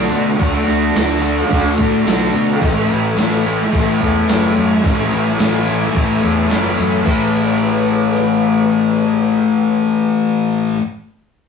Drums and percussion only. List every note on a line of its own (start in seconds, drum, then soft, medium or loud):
0.12 tambourine medium
0.26 tambourine soft
0.39 kick loud
0.39 tambourine medium
0.39 crash medium
0.67 tambourine medium
0.95 snare loud
0.95 tambourine loud
0.95 crash medium
1.09 tambourine soft
1.23 tambourine medium
1.37 snare soft
1.37 tambourine soft
1.51 kick loud
1.51 crash medium
1.65 tambourine soft
1.78 kick medium
1.78 tambourine soft
1.93 tambourine soft
2.06 snare loud
2.06 tambourine medium
2.06 crash medium
2.34 tambourine medium
2.48 tambourine soft
2.62 kick loud
2.62 tambourine medium
2.62 crash medium
2.90 tambourine medium
3.04 tambourine soft
3.17 snare loud
3.17 tambourine medium
3.17 crash medium
3.45 tambourine medium
3.59 snare soft
3.59 tambourine soft
3.73 kick loud
3.73 crash medium
3.86 tambourine soft
4.01 kick medium
4.01 tambourine soft
4.15 tambourine soft
4.28 snare loud
4.28 tambourine medium
4.28 crash medium
4.57 tambourine medium
4.71 tambourine soft
4.84 kick loud
4.84 tambourine medium
4.84 crash medium
4.98 tambourine soft
5.13 tambourine medium
5.27 snare soft
5.39 snare loud
5.39 tambourine loud
5.39 crash medium
5.67 tambourine medium
5.82 snare soft
5.82 tambourine soft
5.94 kick loud
5.94 tambourine soft
5.94 crash medium
6.23 tambourine soft
6.36 tambourine soft
6.50 snare loud
6.50 tambourine medium
6.50 crash medium
6.64 tambourine soft
6.77 tambourine medium
6.91 tambourine soft
7.05 kick loud
7.05 crash medium
7.05 tambourine medium
8.15 cross-stick medium